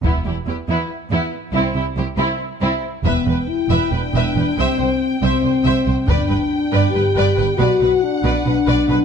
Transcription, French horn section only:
\new Staff \with { instrumentName = "French horn section" } { \time 7/8 \key e \minor \tempo 4 = 139 r2. r8 | r2. r8 | b4 e'4 d'4. | c'4. c'2 |
d'2 g'4. | fis'4 d'4 d'4. | }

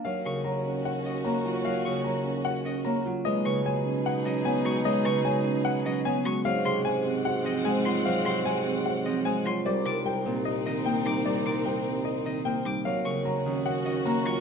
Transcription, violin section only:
\new Staff \with { instrumentName = "Violin section" } { \time 4/4 \key ees \minor \tempo 4 = 150 <des' ges'>1~ | <des' ges'>2.~ <des' ges'>8 r8 | <dis' gis'>1~ | <dis' gis'>2.~ <dis' gis'>8 r8 |
<c' ges''>1~ | <c' ges''>2.~ <c' ges''>8 r8 | <c' ees'>1~ | <c' ees'>2.~ <c' ees'>8 r8 |
<des' ges'>1 | }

